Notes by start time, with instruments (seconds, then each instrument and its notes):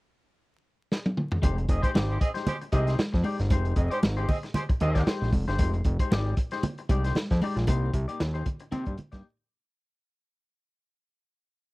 0.92 snare
1.06 high tom
1.17 mid tom
1.32 floor tom
1.42 analog synth bass F1, clean electric guitar G#3 D#4 G4 C5, kick, closed hi-hat, muted conga
1.57 muted clean electric guitar stroke, closed hi-hat
1.68 analog synth bass F1, horn section C4 G#4 D#5, muted clean electric guitar stroke, kick, closed hi-hat
1.83 horn section G#3 G4 C5, clean electric guitar G#3 D#4 G4 C5, kick, closed hi-hat
1.94 analog synth bass G#1, clean electric guitar G#3 D#4 G4 D5, snare, high conga
2.09 horn section G#3 G4 C5
2.20 horn section C4 G#4 D#5, muted clean electric guitar stroke, kick, closed hi-hat
2.34 clean electric guitar G#3 D#4 G4 C5, snare, closed hi-hat
2.46 horn section G#3 G4 C5, muted clean electric guitar stroke, closed hi-hat, muted conga, low conga
2.61 muted clean electric guitar stroke, closed hi-hat
2.72 analog synth bass C2, clean electric guitar G#3 D#4 G4 D5, horn section C4 G#4 D#5, kick, closed hi-hat, muted conga
2.87 clean electric guitar G#3 D#4 G4 C5, snare, closed hi-hat
2.98 muted clean electric guitar stroke, snare, high conga
3.13 analog synth bass F2, muted clean electric guitar stroke, kick, snare
3.24 clean electric guitar G#3 D#4 G4 D5, open hi-hat, high conga
3.38 analog synth bass G1, muted clean electric guitar stroke, snare, closed hi-hat
3.50 analog synth bass F1, clean electric guitar G#3 D#4 G4 C5, kick, closed hi-hat, muted conga
3.65 closed hi-hat
3.76 analog synth bass F1, horn section C4 G#4 D#5, muted clean electric guitar stroke, kick, closed hi-hat
3.90 horn section G#3 G4 C5, clean electric guitar G#3 D#4 G4 D5, closed hi-hat
4.02 analog synth bass G#1, muted clean electric guitar stroke, snare, high conga
4.17 horn section G#3 G4 C5, clean electric guitar G#3 D#4 G4 C5, closed hi-hat
4.28 horn section C4 G#4 D#5, muted clean electric guitar stroke, kick, open hi-hat, low conga
4.43 muted clean electric guitar stroke, snare, closed hi-hat
4.54 horn section G#3 G4 C5, muted clean electric guitar stroke, closed hi-hat, muted conga, low conga
4.69 muted clean electric guitar stroke, kick, closed hi-hat
4.80 analog synth bass D#2, horn section C4 G#4 D#5, closed hi-hat, muted conga, low conga
4.95 clean electric guitar G#3 D#4 G4 D5, kick, snare, closed hi-hat
5.06 clean electric guitar G#3 D#4 G4 C5, snare, high conga
5.22 analog synth bass A#1, snare
5.33 analog synth bass F1, muted clean electric guitar stroke, kick, open hi-hat, high conga
5.48 analog synth bass G1, clean electric guitar G#3 D#4 G4 C5, snare, closed hi-hat
5.59 analog synth bass F1, clean electric guitar G#3 D#4 G4 C5, kick, closed hi-hat, muted conga
5.73 muted clean electric guitar stroke, closed hi-hat
5.84 analog synth bass F1, muted clean electric guitar stroke, kick, closed hi-hat, muted conga
5.99 clean electric guitar G#3 D#4 G4 C5, kick, closed hi-hat
6.11 analog synth bass G#1, clean electric guitar G#3 D#4 G4 D5, snare, high conga
6.37 muted clean electric guitar stroke, kick, closed hi-hat
6.51 clean electric guitar G#3 D#4 G4 C5, snare, closed hi-hat
6.63 muted clean electric guitar stroke, closed hi-hat, muted conga, low conga
6.78 muted clean electric guitar stroke, closed hi-hat
6.89 analog synth bass C2, clean electric guitar G#3 D#4 G4 D5, kick, closed hi-hat, muted conga
7.04 clean electric guitar G#3 D#4 G4 C5, snare, closed hi-hat
7.15 muted clean electric guitar stroke, snare, high conga
7.30 analog synth bass F2, muted clean electric guitar stroke, kick, snare, closed hi-hat
7.42 clean electric guitar G#3 D#4 G4 D5, open hi-hat, high conga
7.56 analog synth bass A#1, muted clean electric guitar stroke, snare, closed hi-hat
7.67 analog synth bass C2, clean electric guitar A#3 D#4 G4 C5, kick, closed hi-hat, muted conga
7.93 analog synth bass C2, kick, closed hi-hat, muted conga
8.08 clean electric guitar A#3 D#4 G4 D5, closed hi-hat
8.20 analog synth bass D#2, muted clean electric guitar stroke, snare, high conga
8.34 clean electric guitar A#3 D#4 G4 C5, closed hi-hat
8.46 muted clean electric guitar stroke, kick, closed hi-hat, low conga
8.60 muted clean electric guitar stroke, closed hi-hat
8.71 analog synth bass C3, clean electric guitar A#3 D#4 G4 C5, closed hi-hat, muted conga, low conga
8.86 analog synth bass G2, kick, closed hi-hat
8.97 muted clean electric guitar stroke, closed hi-hat, muted conga, low conga
9.12 analog synth bass G2, clean electric guitar A#3 D#4 G4 D5, kick, snare, closed hi-hat